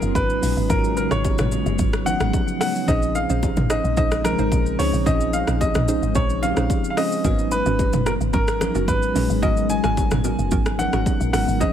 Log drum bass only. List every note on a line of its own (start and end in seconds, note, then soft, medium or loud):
0.02 0.14 F#1 medium
0.15 0.40 G#1 loud
0.43 0.56 A#1 medium
0.57 0.69 G#1 medium
0.70 1.08 G#1 loud
1.12 1.36 G#1 loud
1.39 1.64 G#1 medium
1.66 1.78 F#1 loud
1.79 2.17 G#1 loud
2.21 2.33 G#1 medium
2.88 3.26 A#1 loud
3.30 3.55 A#1 loud
3.57 3.82 G#1 medium
3.84 3.96 A#1 medium
3.97 4.35 A#1 loud
4.39 4.51 G#1 medium
4.52 4.77 A#1 loud
4.79 4.92 C#2 medium
4.93 5.05 A#1 medium
5.06 5.44 A#1 loud
5.48 5.73 A#1 loud
5.75 6.00 A#1 medium
6.03 6.14 G#1 medium
6.16 6.53 A#1 loud
6.57 6.69 A#1 medium
7.25 7.63 G#1 loud
7.66 7.91 G#1 loud
7.93 8.18 F#1 medium
8.21 8.33 G#1 medium
8.34 8.72 G#1 loud
8.75 8.87 F#1 medium
8.88 9.13 G#1 loud
9.16 9.29 A#1 loud
9.30 9.42 G#1 medium
9.43 9.81 G#1 loud
9.84 10.09 G#1 loud
10.11 10.36 G#1 loud
10.39 10.51 F#1 medium
10.52 10.90 G#1 loud
10.93 11.05 G#1 medium
11.21 11.33 A#1 loud
11.34 11.47 G#1 medium
11.48 11.62 G#1 medium
11.61 11.73 A#1 loud